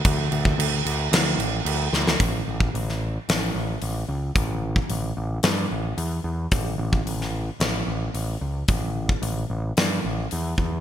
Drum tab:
CC |x-x-x-x-x-x-x---|----------------|----------------|----------------|
HH |----------------|o---o---o---o---|o---o---o---o---|o---o---o---o---|
SD |--------o-----oo|-----o--o-------|--------o-------|-----o--o-------|
BD |o--o------------|o--o------------|o--o------------|o--o------------|

CC |----------------|
HH |o---o---o---o---|
SD |--------o-------|
BD |o--o----------o-|